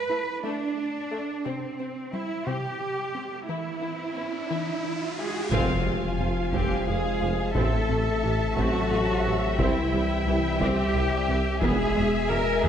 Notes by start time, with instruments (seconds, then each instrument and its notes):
Already playing: cello section B4
0.10 violin section A3, synth arpeggio sound E4
0.44 synth arpeggio sound A3, violin section A3, cello section D4
1.11 violin section A3, synth arpeggio sound A4
1.45 synth arpeggio sound C3, violin section C4, cello section C4, riser
1.79 violin section C4, synth arpeggio sound C4
2.13 synth arpeggio sound G3, violin section C4, cello section E4
2.47 synth arpeggio sound C3, violin section C4, cello section G4
3.14 violin section C4, synth arpeggio sound C4
3.49 synth arpeggio sound E3, violin section E4, cello section E4
3.81 violin section E4, synth arpeggio sound E4
4.15 synth arpeggio sound B3, violin section E4
4.50 synth arpeggio sound E3, violin section E4
5.18 french horn section G#3, violin section E4, synth arpeggio sound E4, cello section G#4
5.51 tuba F1, sub bass F1, double bass section F1, trombone section C3 F3, french horn section F3, synth arpeggio sound F3, viola section C4, cello section F4, violin section F5 G#5, taiko, impact
5.86 double bass section F1, tuba F1, viola section G#3, synth arpeggio sound G#3
6.19 tuba F1, double bass section F1, viola section F3, synth arpeggio sound C4
6.53 tuba F1, double bass section F1, synth arpeggio sound F3, french horn section G3, viola section C4, cello section G4, taiko
6.87 tuba F1, double bass section F1, viola section G#3, french horn section G#3, synth arpeggio sound F4, cello section G#4
7.21 tuba F1, double bass section F1, viola section F3, synth arpeggio sound F4
7.55 tuba A1, sub bass A1, double bass section A1, trombone section A3, synth arpeggio sound A3, french horn section A3, viola section C4, cello section A4, violin section E5 A5, taiko
7.89 tuba A1, double bass section A1, viola section A3, synth arpeggio sound C4
8.23 tuba A1, double bass section A1, viola section E3, synth arpeggio sound E4
8.56 tuba A1, double bass section A1, french horn section F#3, synth arpeggio sound A3, viola section C4, cello section F#4, taiko
8.91 tuba A1, double bass section A1, viola section A3, synth arpeggio sound A4
9.24 tuba A1, double bass section A1, viola section E3, synth arpeggio sound A4
9.58 tuba C2, double bass section C2, sub bass C2, trombone section C3 G3, synth arpeggio sound C3, french horn section E3, viola section C4, cello section E4, violin section G5, taiko
9.92 double bass section C2, tuba C2, synth arpeggio sound E3, viola section G3
10.26 double bass section C2, tuba C2, viola section E3, synth arpeggio sound G3
10.60 double bass section C2, tuba C2, synth arpeggio sound C3, french horn section G3, viola section C4, cello section G4, taiko
10.94 double bass section C2, tuba C2, viola section G3, synth arpeggio sound C4
11.28 tuba C2, double bass section C2, viola section E3, synth arpeggio sound C4
11.61 tuba E1, sub bass E1, double bass section E2, trombone section B2 G#3, synth arpeggio sound E3, french horn section G#3, viola section B3, cello section G#4, violin section E5 G#5, taiko
11.96 tuba E1, double bass section E2, synth arpeggio sound G#3, viola section G#3
12.29 tuba E1, double bass section E2, viola section E3, synth arpeggio sound B3, cello section A#4, french horn section A#4
12.63 tuba E1, double bass section E2, synth arpeggio sound E3, french horn section G#3, viola section B3, cello section G#4, taiko low-mid